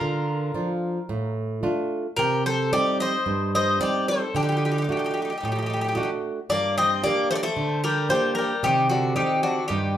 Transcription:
Already playing: F4 A#4
0.01 D3
0.54 F3 D4 F4
1.09 A2
1.63 A3 D4 F4
2.16 C3 G4 A#4
2.46 A4 C5
2.72 G3 C4 D#4 G4 D5
3.00 C5 D#5
3.26 G2
3.55 C5 D#5
3.80 G3 C4 D#4 G4 D5
4.08 A4 C5
4.35 D3 D4 G4
4.43 D#4 G4
4.49 D#4 G4
4.57 D#4 G4
4.65 D#4 G4
4.71 D#4 G4
4.78 D#4 G4
4.84 G4
4.89 A3 D4 D#4 F#4 G4
4.97 D#4 G4
5.04 D#4 G4
5.11 D#4 G4
5.17 D#4
5.22 D#4 G4
5.30 D#4 G4
5.38 D#4 G4
5.43 A2 G4
5.48 D#4
5.52 D#4 G4
5.59 D#4 G4
5.66 D#4 G4
5.73 D#4 G4
5.81 D#4 G4
5.89 D#4 G4
5.95 A3 D4 D#4 F#4 G4
6.03 D#4 G4
6.49 G2 A#3 D5
6.78 C4 D#5
7.03 A#3 D4 G4 D5
7.31 A3 C5
7.35 A#3 D5
7.43 A3 C5
7.57 D3
7.84 G3 A#4
8.09 G3 A#3 D4 G4 C5
8.35 G3 A#4
8.63 C3 D#3 G4
8.89 D3 F#4
9.16 D#3 C4 D#4 G4
9.43 D3 F#4
9.68 G2 D#3 G4

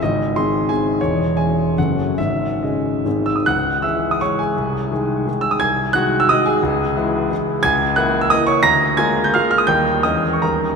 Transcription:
0.02 G#1 G#2 D#5
0.36 D#3 C4 G#4 C6
0.69 D#3 C4 G#4 G#5
1.01 E1 E2 C#5
1.37 E3 C#4 G#4 G#5
1.78 F#1 F#2 C#3 C#4 A4 F#5
2.18 G#1 G#2 E5
2.63 C#3 C#4 G#4 D#5
3.05 G#1 G#2 D#3 C4 G#4
3.26 E6
3.36 D#6
3.46 C#2 F#5 F#6
3.82 E3 G#3 G#4 E5 E6
4.11 D#6
4.21 E3 G#3 G#4 C#5 C#6
4.39 G#4 G#5
4.57 C2
4.91 D#3 G#3 G#4
5.27 D#3 G#3 G#4
5.41 E6
5.51 D#6
5.60 C2 G#5 G#6
5.93 D#3 G#3 F#4 F#5 F#6
6.20 E6
6.29 D#3 G#3 F#4 D#5 D#6
6.46 G#4 G#5
6.63 C#2
6.96 E3 G#3 E4
7.31 E3 G#3 E4
7.63 C#2 G#5 G#6
7.96 E3 A#3 E4 F#5 F#6
8.21 E6
8.30 E3 A#3 E4 D#5 D#6
8.47 C#5 C#6
8.63 D2 A#5 A#6
8.97 G#3 A#3 F4 G#5 G#6
9.24 G6
9.34 G#3 A#3 F4 F5 F6
9.51 F6
9.58 D#6
9.67 D#2 G3 A#3 D#4 G5 G6
10.03 E2 G#3 C#4 D#5 D#6
10.33 C#6
10.42 D#2 G3 C#4 D#4 A#4 A#5

